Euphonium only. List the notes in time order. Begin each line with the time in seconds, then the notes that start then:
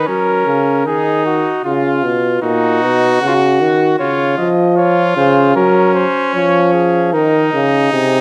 0.08 F#3
0.46 C#3
0.86 D#3
1.65 C#3
2.04 B2
2.42 A#2
2.82 B2
3.21 C#3
3.61 D#3
4.00 C#3
4.38 F3
5.17 C#3
5.56 F#3
6.35 F3
7.14 D#3
7.53 C#3
7.93 C3